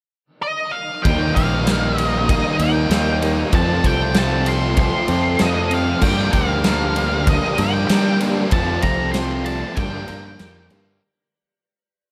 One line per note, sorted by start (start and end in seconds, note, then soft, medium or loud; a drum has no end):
0.42 0.75 D#5 medium
0.72 1.03 F5 loud
1.03 1.32 D#2 loud
1.03 1.35 D#3 medium
1.03 1.35 G3 loud
1.03 1.36 A#3 loud
1.03 1.36 D#4 loud
1.03 3.51 A#4 medium
1.03 1.35 G5 loud
1.03 3.51 G5 medium
1.03 9.73 D6 medium
1.03 3.51 D#6 medium
1.03 kick loud
1.03 ride medium
1.07 1.68 G4 loud
1.35 2.41 A#1 medium
1.35 1.65 D#3 medium
1.35 1.66 G3 medium
1.35 1.66 A#3 medium
1.35 1.67 D#4 medium
1.35 2.91 G4 medium
1.35 1.99 F5 loud
1.35 kick medium
1.35 ride medium
1.66 1.96 D#3 loud
1.66 1.97 G3 loud
1.66 1.97 A#3 loud
1.66 1.97 D#4 loud
1.66 2.29 G4 medium
1.66 snare loud
1.66 ride loud
1.97 2.27 D#3 medium
1.97 2.28 G3 medium
1.97 2.28 A#3 medium
1.97 2.28 D#4 loud
1.97 2.25 D#5 loud
1.97 ride medium
2.27 2.59 D#3 medium
2.27 2.59 G3 medium
2.27 2.60 A#3 medium
2.27 2.60 D#4 medium
2.27 2.58 G4 loud
2.27 2.60 D#5 medium
2.27 kick loud
2.27 ride loud
2.57 2.86 D#2 loud
2.57 2.90 D#3 medium
2.57 2.90 G3 loud
2.57 2.91 A#3 medium
2.57 2.92 G4 medium
2.57 3.17 G5 medium
2.57 ride medium
2.62 2.91 D#4 loud
2.90 3.43 D#2 loud
2.90 3.22 D#3 medium
2.90 3.22 G3 medium
2.90 3.23 A#3 medium
2.90 3.23 D#4 medium
2.90 3.54 G4 medium
2.90 snare loud
2.90 ride loud
2.94 3.53 G4 medium
3.22 3.52 D#3 medium
3.22 3.52 G3 loud
3.22 3.52 A#3 loud
3.22 3.53 D#4 medium
3.22 snare soft
3.22 ride medium
3.53 3.83 F2 medium
3.53 3.80 F2 loud
3.53 3.84 C3 loud
3.53 3.85 F3 medium
3.53 3.84 A3 loud
3.53 3.85 C4 loud
3.53 4.17 F4 loud
3.53 4.16 A4 loud
3.53 6.01 A4 medium
3.53 8.49 F5 medium
3.53 3.86 A5 loud
3.53 6.01 C6 medium
3.53 kick loud
3.53 ride loud
3.84 4.90 C2 medium
3.84 4.15 F2 medium
3.84 4.15 C3 medium
3.84 4.16 F3 medium
3.84 4.16 A3 loud
3.84 4.16 C4 medium
3.84 5.38 A4 medium
3.84 4.17 G5 medium
3.84 kick medium
3.84 ride medium
4.14 4.46 F2 medium
4.14 4.47 C3 medium
4.14 4.48 F3 loud
4.14 4.47 A3 loud
4.14 4.48 C4 loud
4.14 4.79 F4 medium
4.14 4.79 A4 medium
4.14 4.48 A5 loud
4.14 snare loud
4.14 ride loud
4.46 4.77 F2 medium
4.46 4.78 C3 medium
4.46 4.79 F3 medium
4.46 4.79 A3 medium
4.46 4.79 C4 medium
4.46 4.78 C6 loud
4.46 ride medium
4.77 5.09 F2 medium
4.77 5.09 C3 medium
4.77 5.11 F3 medium
4.77 5.10 A3 loud
4.77 5.11 C4 loud
4.77 5.09 F4 loud
4.77 5.07 A4 loud
4.77 5.43 C6 loud
4.77 kick loud
4.77 ride loud
5.08 5.35 F2 medium
5.08 5.39 F2 loud
5.08 5.39 C3 medium
5.08 5.41 F3 medium
5.08 5.40 A3 medium
5.08 5.41 C4 medium
5.08 5.41 F4 medium
5.08 5.42 A4 medium
5.08 ride medium
5.12 5.41 C4 loud
5.39 5.71 F2 medium
5.39 5.94 F2 loud
5.39 5.71 C3 loud
5.39 5.73 F3 medium
5.39 5.72 A3 loud
5.39 5.72 C4 loud
5.39 6.05 F4 medium
5.39 6.02 A4 medium
5.39 5.73 D#5 medium
5.39 snare loud
5.39 ride loud
5.71 6.01 F2 medium
5.71 6.01 C3 loud
5.71 6.05 F3 medium
5.71 6.02 A3 medium
5.71 6.02 C4 loud
5.71 6.02 F5 medium
5.71 ride medium
6.01 6.28 G2 loud
6.01 6.33 G2 medium
6.01 6.34 D3 loud
6.01 7.27 F3 medium
6.01 6.34 G3 loud
6.01 8.50 G4 medium
6.01 6.66 A#4 loud
6.01 6.32 G5 loud
6.01 8.50 A#5 medium
6.01 kick loud
6.01 crash medium
6.06 6.34 A#3 medium
6.06 6.36 D4 loud
6.33 7.39 D2 medium
6.33 6.64 G2 medium
6.33 6.64 D3 medium
6.33 6.65 G3 medium
6.33 6.66 A#3 loud
6.33 6.67 D4 loud
6.33 7.89 G4 medium
6.33 7.30 F5 loud
6.33 kick medium
6.33 ride medium
6.64 6.96 G2 loud
6.64 6.97 D3 loud
6.64 6.97 G3 loud
6.64 6.97 A#3 loud
6.64 6.98 D4 loud
6.64 7.28 A#4 medium
6.64 snare loud
6.64 ride loud
6.96 7.28 G2 medium
6.96 7.28 D3 loud
6.96 7.28 G3 medium
6.96 7.29 A#3 medium
6.96 7.30 D4 loud
6.96 ride medium
7.27 7.58 G2 medium
7.27 7.58 D3 medium
7.27 8.52 F3 medium
7.27 7.59 G3 loud
7.27 7.59 A#3 loud
7.27 7.60 D4 loud
7.27 7.57 A#4 loud
7.27 7.60 D#5 medium
7.27 kick loud
7.27 ride loud
7.58 7.85 G2 loud
7.58 7.89 G2 medium
7.58 7.90 D3 medium
7.58 7.90 G3 medium
7.58 7.91 A#3 medium
7.58 7.91 D4 medium
7.58 7.91 A#4 medium
7.58 8.17 G5 medium
7.58 ride medium
7.89 8.19 G2 loud
7.89 8.20 D3 medium
7.89 8.43 G3 medium
7.89 8.20 G3 loud
7.89 8.21 A#3 loud
7.89 8.22 D4 medium
7.89 8.52 G4 medium
7.89 8.51 A#4 medium
7.89 snare loud
7.89 ride loud
8.21 8.50 G2 medium
8.21 8.51 D3 medium
8.21 8.51 G3 medium
8.21 8.51 A#3 medium
8.21 8.54 D4 medium
8.21 snare soft
8.21 ride medium
8.51 8.79 F2 loud
8.51 8.83 F2 medium
8.51 8.84 C3 loud
8.51 8.84 F3 medium
8.51 8.84 A3 loud
8.51 9.77 A3 medium
8.51 8.85 C4 loud
8.51 9.14 F4 medium
8.51 9.15 A4 loud
8.51 11.00 F5 medium
8.51 8.82 A5 loud
8.51 9.76 C6 medium
8.51 kick loud
8.51 ride loud
8.82 9.62 C2 medium
8.82 9.13 F2 medium
8.82 9.14 C3 medium
8.82 9.15 F3 medium
8.82 9.15 A3 medium
8.82 9.15 C4 loud
8.82 9.77 A4 medium
8.82 9.11 A#5 loud
8.82 kick medium
8.82 ride medium
9.12 9.45 F2 medium
9.12 9.45 C3 loud
9.12 9.76 F4 medium
9.12 9.45 C6 loud
9.12 snare loud
9.12 ride loud
9.16 9.46 F3 medium
9.16 9.46 A3 loud
9.16 9.47 C4 loud
9.16 9.76 A4 medium
9.46 9.75 F2 medium
9.46 9.75 C3 medium
9.46 9.76 F3 medium
9.46 9.76 A3 medium
9.46 9.76 C4 medium
9.46 9.77 D4 medium
9.46 9.78 A5 loud
9.46 ride medium
9.75 10.07 G2 loud
9.75 10.03 G2 medium
9.75 10.07 D3 loud
9.75 11.02 F3 medium
9.75 10.08 G3 loud
9.75 10.08 A#3 loud
9.75 10.09 D4 loud
9.75 11.01 G4 medium
9.75 10.07 A#4 loud
9.75 10.66 G5 medium
9.75 11.00 A#5 medium
9.75 11.00 D6 medium
9.75 kick loud
9.75 ride loud
10.08 10.38 G2 medium
10.08 10.36 G2 loud
10.08 10.39 D3 medium
10.08 10.40 G3 medium
10.08 10.40 A#3 medium
10.08 10.40 D4 loud
10.08 10.41 A#4 medium
10.08 ride medium
10.39 10.68 F2 medium
10.39 10.70 G2 medium
10.39 10.70 D3 medium
10.39 10.71 G3 medium
10.39 10.71 A#3 loud
10.39 10.72 D4 medium
10.39 11.01 G4 medium
10.39 11.01 A#4 medium
10.39 snare loud
10.39 ride loud
10.70 11.00 G2 medium
10.70 10.99 G2 medium
10.70 11.00 D3 medium
10.70 11.01 G3 medium
10.70 11.00 A#3 medium
10.70 11.01 D4 medium
10.70 ride medium